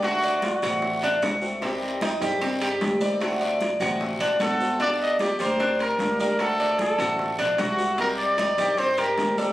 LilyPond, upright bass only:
\new Staff \with { instrumentName = "Upright bass" } { \clef bass \time 4/4 \key d \phrygian \tempo 4 = 151 d,4. a,,4. c,4~ | c,4. g,4. d,4~ | d,4. a,,4 a,,8 g,,4~ | g,,4. d,4. d,4~ |
d,4. a,,4 bes,,8 c,4~ | c,4. g,4. d,4 | }